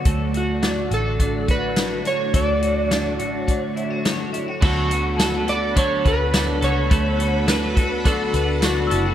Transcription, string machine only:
X:1
M:4/4
L:1/8
Q:1/4=105
K:D
V:1 name="String machine"
[D,A,DF]8- | [D,A,DF]8 | [DAfb]8- | [DAfb]8 |]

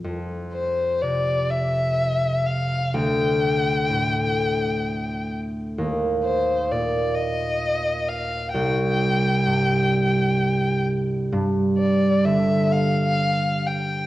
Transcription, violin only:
X:1
M:3/4
L:1/8
Q:1/4=64
K:F
V:1 name="Violin"
z c d e2 f | g4- g z | z c d _e2 f | g4- g z |
z d e f2 g |]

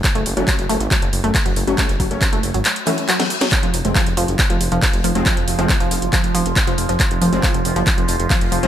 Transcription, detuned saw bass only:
X:1
M:4/4
L:1/16
Q:1/4=138
K:Gblyd
V:1 name="Detuned saw bass" clef=bass
z G,,, G,,, G,,, z G,,, G,,, A,,, z G,,, G,,, G,,, z G,,, G,,, G,,, | z G,,, G,,, G,,, z G,,, G,,, A,,, z8 | z F,,, F,,, F,,, z F,,, F,,, G,,, z F,,, F,,, F,,, z F,,, F,,, F,,, | z F,,, F,,, F,,, z F,,, F,,, G,,, z F,,, F,,, F,,, z F,,, F,,, F,,, |
z F,,, F,,, F,,, z F,,, F,,, G,,, z F,,, F,,, F,,, z F,,, F,,, F,,, |]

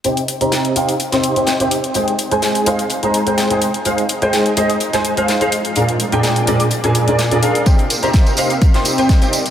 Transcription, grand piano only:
X:1
M:4/4
L:1/16
Q:"Swing 16ths" 1/4=126
K:Cm
V:1 name="Grand piano"
[C,EGcg] z2 [C,EGcb]3 [C,EGcf] z2 [C,EGcc']2 [C,EGcg]2 [C,EGcg] z2 | [A,EAcg] z2 [A,EAca]3 [A,EAcf] z2 [A,EAcb]2 [A,EAcg]2 [A,EAcg] z2 | [A,EAcf] z2 [A,EAcg]3 [A,EAce] z2 [A,EAca]2 [A,EAcf]2 [EAcf] z2 | [B,,DABf] z2 [B,,DABg]3 [B,,DABd] z2 [B,,DABa]2 [B,,DABd]2 [B,,DABd] [DABf]2 |
[C,EGcg] z2 [C,EGcb]3 [C,EGcf] z2 [C,EGcc']2 [C,EGcg]2 [C,EGcg] z2 |]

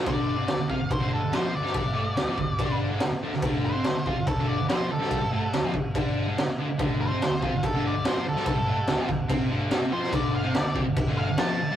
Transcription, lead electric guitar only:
X:1
M:4/4
L:1/8
Q:1/4=143
K:Clyd
V:1 name="Lead electric guitar"
d3 =f c A c d- | d4- d z3 | z c2 =F A d c A- | A3 z4 z |
z c2 =F A d c A- | A3 z4 c | d =f d z2 f a2 |]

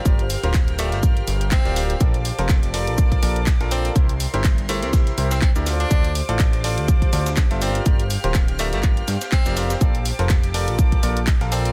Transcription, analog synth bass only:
X:1
M:4/4
L:1/16
Q:"Swing 16ths" 1/4=123
K:Gdor
V:1 name="Analog synth bass" clef=bass
G,,,2 z D,,,4 G,,,2 z G,,,2 z D,,,2 z | B,,,2 z F,,,4 B,,,2 z B,,,2 z B,,,2 z | C,,2 z G,,,4 C,,2 z C,,2 z D,,2 z | D,,2 z A,,,4 D,,2 z D,,2 z G,,,2 z |
G,,,2 z D,,,4 G,,,2 z G,, z2 F,,,2 z | B,,,2 z F,,,4 B,,,2 z B,,,2 z B,,,2 z |]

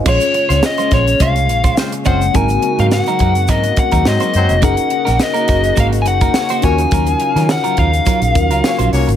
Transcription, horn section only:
X:1
M:4/4
L:1/16
Q:"Swing 16ths" 1/4=105
K:Bbm
V:1 name="Horn section"
z12 [A,CFc] z [A,CFc]2 | z12 [G,CEc] z [G,CEc]2 | z12 [B,DGd] z [B,DGd]2 | z12 [B,DGd] z [B,DGd]2 |]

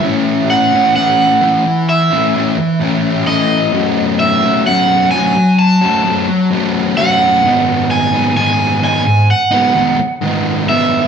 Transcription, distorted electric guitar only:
X:1
M:4/4
L:1/16
Q:1/4=65
K:Alyd
V:1 name="Distorted electric guitar"
[E,A,CE]3 [A,CE] [E,A,CE]2 [E,A,CE]3 [A,CE] [E,A,CE]2 [E,A,CE]2 [E,A,CE]2 | [F,A,CF]3 [A,CF] [F,A,CF]2 [F,A,CF]3 [A,CF] [F,A,CF]2 [F,A,CF]2 [F,A,CF]2 | [G,,D,G,B,D]3 [G,B,D] [G,,D,G,B,D]2 [D,G,B,D]3 [G,B,D] [D,G,B,D]2 [G,,D,G,B,D]2 [D,G,B,D]2 |]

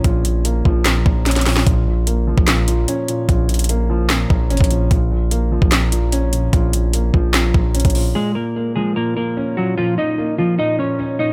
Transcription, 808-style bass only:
X:1
M:4/4
L:1/16
Q:1/4=148
K:Bbm
V:1 name="808-style bass" clef=bass
B,,,6 B,,,4 B,,,6 | B,,,6- B,,, B,,,4- B,,, z4 | B,,,8- B,,,2 B,,,2 A,,, B,,,3 | B,,,6- B,,, B,,,8- B,,, |
B,,,6 B,,,4 B,,,3 B,,,3 | z16 | z16 |]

